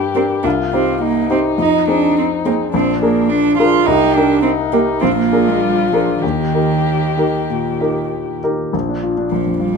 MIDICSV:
0, 0, Header, 1, 4, 480
1, 0, Start_track
1, 0, Key_signature, -3, "major"
1, 0, Tempo, 571973
1, 1337, Time_signature, 4, 2, 24, 8
1, 4207, Tempo, 605449
1, 5167, Tempo, 626959
1, 7087, Tempo, 582524
1, 7943, End_track
2, 0, Start_track
2, 0, Title_t, "Grand piano"
2, 0, Program_c, 0, 0
2, 0, Control_c, 0, 64, 127
2, 0, Note_on_c, 0, 43, 44
2, 0, Note_on_c, 0, 62, 32
2, 0, Note_on_c, 0, 67, 30
2, 0, Note_on_c, 0, 70, 35
2, 97, Note_off_c, 0, 62, 0
2, 99, Note_off_c, 0, 67, 0
2, 102, Note_off_c, 0, 70, 0
2, 124, Note_on_c, 0, 62, 30
2, 130, Note_on_c, 0, 67, 29
2, 130, Note_on_c, 0, 70, 31
2, 346, Note_off_c, 0, 62, 0
2, 349, Note_off_c, 0, 67, 0
2, 349, Note_off_c, 0, 70, 0
2, 369, Note_on_c, 0, 36, 45
2, 391, Control_c, 0, 64, 0
2, 393, Note_off_c, 0, 43, 0
2, 502, Control_c, 0, 64, 127
2, 606, Note_off_c, 0, 36, 0
2, 613, Note_on_c, 0, 63, 34
2, 614, Note_on_c, 0, 67, 33
2, 620, Note_on_c, 0, 72, 35
2, 1061, Note_off_c, 0, 63, 0
2, 1062, Note_off_c, 0, 67, 0
2, 1065, Note_off_c, 0, 72, 0
2, 1090, Note_on_c, 0, 63, 33
2, 1093, Note_on_c, 0, 67, 33
2, 1097, Note_on_c, 0, 72, 38
2, 1310, Note_off_c, 0, 63, 0
2, 1311, Note_off_c, 0, 67, 0
2, 1313, Note_off_c, 0, 72, 0
2, 1326, Note_on_c, 0, 41, 44
2, 1353, Control_c, 0, 64, 0
2, 1466, Control_c, 0, 64, 127
2, 1565, Note_off_c, 0, 41, 0
2, 1574, Note_on_c, 0, 60, 32
2, 1578, Note_on_c, 0, 68, 32
2, 1581, Note_on_c, 0, 72, 33
2, 2023, Note_off_c, 0, 60, 0
2, 2025, Note_off_c, 0, 68, 0
2, 2026, Note_off_c, 0, 72, 0
2, 2058, Note_on_c, 0, 60, 33
2, 2063, Note_on_c, 0, 68, 32
2, 2064, Note_on_c, 0, 72, 36
2, 2273, Note_off_c, 0, 60, 0
2, 2276, Note_off_c, 0, 68, 0
2, 2276, Note_off_c, 0, 72, 0
2, 2298, Note_on_c, 0, 34, 51
2, 2311, Control_c, 0, 64, 0
2, 2441, Control_c, 0, 64, 127
2, 2530, Note_off_c, 0, 34, 0
2, 2531, Note_on_c, 0, 62, 35
2, 2537, Note_on_c, 0, 68, 39
2, 2541, Note_on_c, 0, 70, 38
2, 2978, Note_off_c, 0, 62, 0
2, 2981, Note_off_c, 0, 68, 0
2, 2983, Note_off_c, 0, 70, 0
2, 3015, Note_on_c, 0, 62, 40
2, 3017, Note_on_c, 0, 68, 36
2, 3022, Note_on_c, 0, 70, 43
2, 3227, Note_off_c, 0, 62, 0
2, 3228, Note_off_c, 0, 68, 0
2, 3231, Note_off_c, 0, 70, 0
2, 3252, Note_on_c, 0, 36, 53
2, 3267, Control_c, 0, 64, 0
2, 3403, Control_c, 0, 64, 127
2, 3479, Note_off_c, 0, 36, 0
2, 3494, Note_on_c, 0, 63, 38
2, 3499, Note_on_c, 0, 67, 36
2, 3502, Note_on_c, 0, 70, 38
2, 3934, Note_off_c, 0, 63, 0
2, 3936, Note_off_c, 0, 67, 0
2, 3938, Note_off_c, 0, 70, 0
2, 3966, Note_on_c, 0, 63, 38
2, 3971, Note_on_c, 0, 67, 37
2, 3971, Note_on_c, 0, 70, 43
2, 4185, Note_off_c, 0, 63, 0
2, 4188, Note_off_c, 0, 67, 0
2, 4188, Note_off_c, 0, 70, 0
2, 4219, Note_on_c, 0, 34, 49
2, 4222, Control_c, 0, 64, 0
2, 4346, Control_c, 0, 64, 127
2, 4442, Note_off_c, 0, 34, 0
2, 4453, Note_on_c, 0, 62, 38
2, 4457, Note_on_c, 0, 68, 37
2, 4459, Note_on_c, 0, 70, 43
2, 4895, Note_off_c, 0, 62, 0
2, 4897, Note_off_c, 0, 68, 0
2, 4898, Note_off_c, 0, 70, 0
2, 4934, Note_on_c, 0, 62, 34
2, 4934, Note_on_c, 0, 68, 33
2, 4939, Note_on_c, 0, 70, 39
2, 5150, Note_off_c, 0, 62, 0
2, 5150, Note_off_c, 0, 68, 0
2, 5153, Note_off_c, 0, 70, 0
2, 5176, Note_on_c, 0, 39, 44
2, 5183, Control_c, 0, 64, 0
2, 5312, Control_c, 0, 64, 127
2, 5406, Note_off_c, 0, 39, 0
2, 5410, Note_on_c, 0, 63, 30
2, 5413, Note_on_c, 0, 67, 30
2, 5415, Note_on_c, 0, 70, 31
2, 5864, Note_off_c, 0, 63, 0
2, 5866, Note_off_c, 0, 67, 0
2, 5867, Note_off_c, 0, 70, 0
2, 5895, Note_on_c, 0, 63, 28
2, 5900, Note_on_c, 0, 67, 27
2, 5905, Note_on_c, 0, 70, 30
2, 6112, Note_off_c, 0, 63, 0
2, 6115, Note_off_c, 0, 67, 0
2, 6118, Note_off_c, 0, 70, 0
2, 6143, Note_on_c, 0, 46, 35
2, 6372, Note_off_c, 0, 46, 0
2, 6378, Note_on_c, 0, 63, 30
2, 6383, Note_on_c, 0, 67, 29
2, 6386, Note_on_c, 0, 70, 34
2, 6824, Note_off_c, 0, 63, 0
2, 6827, Note_off_c, 0, 67, 0
2, 6828, Note_off_c, 0, 70, 0
2, 6860, Note_on_c, 0, 63, 33
2, 6862, Note_on_c, 0, 67, 30
2, 6862, Note_on_c, 0, 70, 33
2, 7069, Note_off_c, 0, 63, 0
2, 7070, Note_off_c, 0, 67, 0
2, 7070, Note_off_c, 0, 70, 0
2, 7088, Note_on_c, 0, 34, 44
2, 7104, Control_c, 0, 64, 0
2, 7214, Note_on_c, 0, 62, 30
2, 7245, Control_c, 0, 64, 127
2, 7331, Note_on_c, 0, 65, 32
2, 7407, Note_off_c, 0, 62, 0
2, 7452, Note_on_c, 0, 62, 31
2, 7525, Note_off_c, 0, 65, 0
2, 7559, Note_off_c, 0, 34, 0
2, 7571, Note_on_c, 0, 34, 36
2, 7644, Note_off_c, 0, 62, 0
2, 7692, Note_on_c, 0, 41, 31
2, 7801, Note_on_c, 0, 65, 32
2, 7881, Note_off_c, 0, 41, 0
2, 7943, Note_off_c, 0, 34, 0
2, 7943, Note_off_c, 0, 65, 0
2, 7943, End_track
3, 0, Start_track
3, 0, Title_t, "Violin"
3, 0, Program_c, 1, 40
3, 0, Note_on_c, 1, 67, 58
3, 377, Note_on_c, 1, 65, 47
3, 390, Note_off_c, 1, 67, 0
3, 849, Note_on_c, 1, 63, 52
3, 861, Note_off_c, 1, 65, 0
3, 2294, Note_off_c, 1, 63, 0
3, 2297, Note_on_c, 1, 62, 48
3, 3231, Note_off_c, 1, 62, 0
3, 3245, Note_on_c, 1, 67, 59
3, 3710, Note_off_c, 1, 67, 0
3, 3716, Note_on_c, 1, 63, 51
3, 4212, Note_on_c, 1, 65, 60
3, 4224, Note_off_c, 1, 63, 0
3, 5167, Note_on_c, 1, 67, 54
3, 5178, Note_off_c, 1, 65, 0
3, 6853, Note_off_c, 1, 67, 0
3, 7943, End_track
4, 0, Start_track
4, 0, Title_t, "Cello"
4, 0, Program_c, 2, 42
4, 127, Note_on_c, 2, 60, 55
4, 194, Note_off_c, 2, 60, 0
4, 365, Note_on_c, 2, 62, 58
4, 432, Note_off_c, 2, 62, 0
4, 608, Note_on_c, 2, 60, 52
4, 848, Note_off_c, 2, 60, 0
4, 858, Note_on_c, 2, 58, 61
4, 1093, Note_off_c, 2, 58, 0
4, 1098, Note_on_c, 2, 60, 53
4, 1166, Note_off_c, 2, 60, 0
4, 1342, Note_on_c, 2, 63, 60
4, 1576, Note_off_c, 2, 63, 0
4, 1588, Note_on_c, 2, 62, 63
4, 1819, Note_off_c, 2, 62, 0
4, 1831, Note_on_c, 2, 60, 54
4, 1898, Note_off_c, 2, 60, 0
4, 2064, Note_on_c, 2, 58, 57
4, 2131, Note_off_c, 2, 58, 0
4, 2301, Note_on_c, 2, 60, 68
4, 2531, Note_off_c, 2, 60, 0
4, 2536, Note_on_c, 2, 58, 62
4, 2761, Note_on_c, 2, 62, 72
4, 2773, Note_off_c, 2, 58, 0
4, 3003, Note_off_c, 2, 62, 0
4, 3008, Note_on_c, 2, 65, 67
4, 3243, Note_on_c, 2, 63, 74
4, 3256, Note_off_c, 2, 65, 0
4, 3482, Note_on_c, 2, 62, 75
4, 3494, Note_off_c, 2, 63, 0
4, 3708, Note_off_c, 2, 62, 0
4, 3713, Note_on_c, 2, 60, 63
4, 3781, Note_off_c, 2, 60, 0
4, 3965, Note_on_c, 2, 58, 67
4, 4032, Note_off_c, 2, 58, 0
4, 4202, Note_on_c, 2, 60, 70
4, 4320, Note_off_c, 2, 60, 0
4, 4324, Note_on_c, 2, 58, 63
4, 4572, Note_on_c, 2, 56, 59
4, 4584, Note_off_c, 2, 58, 0
4, 4686, Note_on_c, 2, 55, 68
4, 4698, Note_off_c, 2, 56, 0
4, 4923, Note_off_c, 2, 55, 0
4, 4927, Note_on_c, 2, 53, 57
4, 5166, Note_off_c, 2, 53, 0
4, 5182, Note_on_c, 2, 51, 60
4, 6592, Note_off_c, 2, 51, 0
4, 7564, Note_on_c, 2, 53, 50
4, 7782, Note_off_c, 2, 53, 0
4, 7787, Note_on_c, 2, 55, 57
4, 7943, Note_off_c, 2, 55, 0
4, 7943, End_track
0, 0, End_of_file